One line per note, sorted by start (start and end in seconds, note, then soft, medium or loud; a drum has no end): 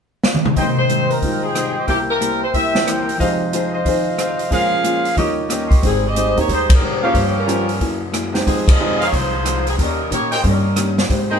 0.23 snare medium
0.35 high tom medium
0.45 mid tom medium
0.56 1.88 G#2 soft
0.56 0.79 G#2 soft
0.56 1.20 D#3 soft
0.56 0.79 G3 soft
0.56 1.88 A#3 soft
0.56 1.88 C4 soft
0.56 0.79 C4 soft
0.56 0.80 D#4 soft
0.56 1.86 C5 medium
0.56 0.77 C5 medium
0.56 1.88 D#5 medium
0.56 1.86 G5 medium
0.56 1.89 G5 soft
0.56 kick soft
0.56 open hi-hat soft
0.79 1.09 C5 medium
0.89 1.11 G#2 soft
0.89 1.12 G3 medium
0.89 1.12 C4 medium
0.89 1.12 D#4 medium
0.89 closed hi-hat soft
1.11 1.43 A#4 medium
1.11 open hi-hat soft
1.21 1.45 G#2 soft
1.21 1.88 D#3 soft
1.21 1.45 G3 soft
1.21 1.88 G#3 soft
1.21 1.45 C4 soft
1.21 1.46 D#4 soft
1.21 1.89 F4 soft
1.21 kick soft
1.21 open hi-hat soft
1.43 1.76 G#4 medium
1.55 1.78 G#2 medium
1.55 1.78 G3 medium
1.55 1.78 C4 medium
1.55 1.78 D#4 medium
1.55 cross-stick medium
1.55 closed hi-hat soft
1.77 1.88 G4 medium
1.86 3.20 C2 soft
1.86 2.09 C3 soft
1.86 3.18 C3 soft
1.86 2.10 G3 soft
1.86 2.10 A#3 soft
1.86 3.21 A#3 soft
1.86 2.10 E4 soft
1.86 3.21 E4 soft
1.86 1.98 G4 medium
1.86 3.20 A#4 medium
1.86 3.19 C5 medium
1.86 3.20 E5 medium
1.86 3.20 G5 medium
1.86 kick soft
1.86 open hi-hat soft
1.90 2.74 G4 soft
2.10 2.40 A#4 medium
2.20 2.43 C3 medium
2.20 2.43 G3 medium
2.20 2.43 A#3 medium
2.20 2.43 E4 medium
2.20 closed hi-hat soft
2.44 2.54 C5 medium
2.53 2.76 C3 soft
2.53 2.77 G3 soft
2.53 2.77 A#3 medium
2.53 2.77 E4 medium
2.53 2.85 E5 loud
2.53 kick soft
2.53 open hi-hat soft
2.71 3.19 E3 soft
2.71 2.94 E6 soft
2.75 3.20 C4 soft
2.75 3.20 G4 soft
2.75 snare soft
2.86 3.09 C3 medium
2.86 3.09 G3 medium
2.86 3.09 A#3 medium
2.86 3.10 E4 medium
2.86 3.12 C6 soft
2.86 cross-stick medium
2.86 closed hi-hat soft
3.03 3.26 A#5 medium
3.09 open hi-hat soft
3.17 4.50 F2 soft
3.17 4.51 C3 soft
3.17 3.42 F3 soft
3.17 4.50 G#3 soft
3.17 3.42 C4 medium
3.17 3.42 D#4 medium
3.17 4.52 D#4 soft
3.17 3.73 C5 medium
3.17 3.72 D#5 medium
3.17 4.51 F5 medium
3.17 kick soft
3.17 open hi-hat soft
3.22 4.53 G4 medium
3.22 3.43 G#4 soft
3.53 3.75 F3 medium
3.53 3.76 C4 medium
3.53 3.76 D#4 medium
3.53 3.76 G#4 medium
3.53 closed hi-hat soft
3.73 4.52 C5 medium
3.73 4.52 D#5 medium
3.85 4.52 D#3 soft
3.85 4.08 F3 medium
3.85 4.08 C4 medium
3.85 4.52 C4 soft
3.85 4.09 D#4 medium
3.85 4.53 F4 soft
3.85 4.09 G#4 medium
3.85 4.53 G#4 soft
3.85 kick soft
3.85 open hi-hat soft
4.17 4.40 F3 medium
4.17 4.41 C4 medium
4.17 4.41 D#4 medium
4.17 4.41 G#4 medium
4.17 cross-stick medium
4.17 closed hi-hat medium
4.39 open hi-hat soft
4.50 4.73 A#2 soft
4.50 5.17 A#2 soft
4.50 5.17 F3 soft
4.50 5.17 G#3 soft
4.50 4.74 G#3 medium
4.50 5.18 C#4 soft
4.50 4.74 C#4 soft
4.50 4.74 F4 medium
4.50 5.18 G#4 medium
4.50 5.16 A#4 medium
4.50 5.18 C5 soft
4.50 5.18 F5 medium
4.50 kick soft
4.50 open hi-hat soft
4.84 5.06 A#2 medium
4.84 5.06 G#3 medium
4.84 5.07 C#4 medium
4.84 5.07 F4 medium
4.84 closed hi-hat soft
5.05 open hi-hat soft
5.16 5.83 D#2 soft
5.16 5.39 D#3 medium
5.16 5.83 D#3 soft
5.16 5.83 G3 soft
5.16 5.40 A#3 soft
5.16 5.40 C#4 soft
5.16 5.83 F4 soft
5.16 5.84 G4 medium
5.16 5.40 G4 medium
5.16 5.84 A#4 medium
5.16 5.83 C#5 soft
5.16 5.84 C#5 medium
5.16 5.84 D#5 medium
5.16 kick soft
5.16 open hi-hat soft
5.49 5.72 D#3 medium
5.49 5.72 A#3 medium
5.49 5.72 C#4 medium
5.49 5.72 G4 medium
5.49 5.76 D#5 soft
5.49 5.65 G5 soft
5.49 cross-stick medium
5.49 closed hi-hat medium
5.59 5.72 A#5 soft
5.67 5.90 G5 soft
5.67 5.78 C6 medium
5.71 kick medium
5.71 open hi-hat soft
5.75 5.87 C#6 soft
5.82 6.33 G#1 medium
5.82 6.05 G#2 soft
5.82 6.05 G3 soft
5.82 6.05 C4 soft
5.82 6.06 D#4 medium
5.82 kick soft
5.82 open hi-hat soft
5.86 6.04 D#3 medium
5.86 6.04 G3 medium
5.86 6.04 C4 medium
5.86 6.04 G#4 medium
6.07 6.39 C4 medium
6.07 6.39 G4 medium
6.07 6.39 G#4 medium
6.07 6.39 D#5 loud
6.15 6.38 G#2 medium
6.15 6.38 G3 medium
6.15 6.39 C4 medium
6.15 6.39 D#4 medium
6.15 closed hi-hat soft
6.37 6.48 D#2 medium
6.37 6.48 A#3 medium
6.37 6.50 A#3 medium
6.37 6.48 C4 medium
6.37 6.48 D#4 medium
6.37 6.50 D#4 medium
6.37 6.48 G4 medium
6.37 6.50 G4 medium
6.37 6.50 C#5 medium
6.37 open hi-hat soft
6.48 6.80 D#2 medium
6.48 6.71 G#2 soft
6.48 6.71 G3 medium
6.48 6.72 C4 soft
6.48 6.72 D#4 soft
6.48 kick soft
6.48 open hi-hat soft
6.53 6.71 G#3 medium
6.53 6.71 D#4 medium
6.53 6.71 G4 medium
6.53 6.71 C5 loud
6.70 kick medium
6.70 ride medium
6.75 7.05 G#3 medium
6.75 7.05 D#4 medium
6.75 7.06 G4 medium
6.75 7.06 A#4 medium
6.80 7.13 F2 medium
6.80 7.03 G#2 medium
6.80 7.03 G3 medium
6.80 7.04 C4 medium
6.80 7.04 D#4 medium
7.03 7.14 A#3 medium
7.03 7.14 C#4 medium
7.03 7.14 F4 medium
7.03 7.46 G4 medium
7.03 7.14 G4 medium
7.03 7.46 A#4 medium
7.03 7.46 C#5 medium
7.03 7.45 F5 medium
7.07 7.18 D#3 medium
7.07 7.17 G3 medium
7.07 7.17 C4 medium
7.07 7.17 G#4 medium
7.13 7.36 G2 soft
7.13 7.77 G2 medium
7.13 7.37 F3 soft
7.13 7.37 A#3 soft
7.13 7.38 C#4 soft
7.13 kick soft
7.13 open hi-hat soft
7.18 7.38 F3 medium
7.18 7.38 A#3 medium
7.18 7.38 C#4 medium
7.18 7.38 G4 medium
7.39 7.80 G3 medium
7.39 8.00 C#4 medium
7.39 7.80 F4 medium
7.39 8.00 A#4 medium
7.46 7.70 G2 medium
7.46 7.70 F3 medium
7.46 7.66 A#3 medium
7.46 7.70 A#3 medium
7.46 7.66 C#4 medium
7.46 7.70 C#4 medium
7.46 7.66 F4 medium
7.46 7.67 G4 medium
7.46 closed hi-hat medium
7.69 open hi-hat soft
7.80 8.43 F#2 medium
7.80 8.02 F#3 soft
7.80 8.03 A#3 medium
7.80 8.03 E4 medium
7.80 8.03 G#4 medium
7.80 kick soft
7.80 open hi-hat soft
8.12 8.35 F#3 medium
8.12 8.36 A#3 medium
8.12 8.36 E4 medium
8.12 8.36 G#4 medium
8.12 cross-stick medium
8.12 closed hi-hat medium
8.33 8.76 G#3 medium
8.33 8.77 C4 medium
8.33 8.77 D#4 medium
8.33 8.77 G4 medium
8.33 snare soft
8.33 open hi-hat soft
8.47 9.09 F2 medium
8.47 8.69 F2 soft
8.47 8.69 D#3 medium
8.47 8.66 F3 medium
8.47 8.70 G#3 soft
8.47 8.66 C4 medium
8.47 8.70 C4 soft
8.47 8.66 D#4 medium
8.47 8.66 G#4 medium
8.47 kick soft
8.47 open hi-hat soft
8.68 9.02 C4 medium
8.68 9.01 F4 medium
8.68 9.02 G#4 medium
8.68 9.02 D#5 loud
8.68 kick medium
8.68 ride medium
8.80 9.02 F2 medium
8.80 9.02 D#3 medium
8.80 8.98 G#3 medium
8.80 9.02 G#3 medium
8.80 8.98 C4 medium
8.80 9.03 C4 medium
8.80 8.98 D#4 medium
8.80 8.99 G4 medium
9.00 9.14 A#3 medium
9.00 9.14 D#4 medium
9.00 9.14 G4 medium
9.00 9.09 G#4 medium
9.00 9.09 C5 medium
9.00 9.14 C#5 medium
9.00 9.08 D#5 medium
9.00 9.08 F5 medium
9.00 open hi-hat soft
9.11 9.75 C2 medium
9.11 9.34 F2 soft
9.11 9.34 D#3 soft
9.11 9.35 G#3 soft
9.11 9.35 C4 soft
9.11 kick soft
9.11 open hi-hat soft
9.16 9.68 G#3 medium
9.16 9.68 D#4 medium
9.16 9.68 F4 medium
9.16 9.68 C5 medium
9.44 9.67 F2 medium
9.44 9.67 D#3 medium
9.44 9.68 G#3 medium
9.44 9.67 C4 medium
9.44 cross-stick medium
9.44 closed hi-hat medium
9.67 9.75 F3 medium
9.67 9.75 C4 medium
9.67 9.74 D#4 medium
9.67 9.74 G#4 medium
9.67 open hi-hat soft
9.77 10.09 D#2 medium
9.77 9.99 D#3 soft
9.77 10.00 A#3 soft
9.77 10.00 C#4 soft
9.77 10.01 G4 soft
9.77 kick soft
9.77 open hi-hat soft
9.81 10.10 G3 medium
9.81 10.10 C#4 medium
9.81 10.10 D#4 medium
9.81 10.10 A#4 medium
10.11 10.42 A#2 medium
10.11 10.33 D#3 medium
10.11 10.34 A#3 medium
10.11 10.32 A#3 medium
10.11 10.34 C#4 medium
10.11 10.32 D#4 medium
10.11 10.34 G4 medium
10.11 10.32 G4 medium
10.11 10.32 C#5 medium
10.11 closed hi-hat soft
10.31 10.45 G#3 medium
10.31 10.45 C#4 medium
10.31 10.45 F4 medium
10.31 10.40 A#4 medium
10.31 10.45 C5 medium
10.31 10.40 C#5 medium
10.31 10.40 D#5 medium
10.31 10.40 G5 medium
10.31 open hi-hat soft
10.42 11.06 G2 medium
10.42 10.65 D#3 soft
10.42 10.66 A#3 soft
10.42 10.66 C#4 soft
10.42 10.66 G4 medium
10.42 kick soft
10.42 open hi-hat soft
10.47 10.96 G3 medium
10.47 10.95 C#4 medium
10.47 10.96 D#4 medium
10.47 10.96 A#4 medium
10.76 10.99 D#3 medium
10.76 10.99 A#3 medium
10.76 11.00 C#4 medium
10.76 10.99 G4 medium
10.76 cross-stick medium
10.76 closed hi-hat medium
10.98 snare soft
10.98 open hi-hat soft
11.09 11.39 G#2 medium
11.09 11.31 G#3 medium
11.09 11.32 C4 soft
11.09 11.32 D#4 soft
11.09 11.32 G4 medium
11.09 kick soft
11.09 open hi-hat soft
11.30 11.39 A#3 medium
11.30 11.39 C4 soft
11.30 11.39 D#4 soft
11.30 11.39 G4 medium
11.30 11.39 G#4 medium
11.30 11.39 C5 medium
11.30 11.39 D#5 medium
11.30 11.39 G5 medium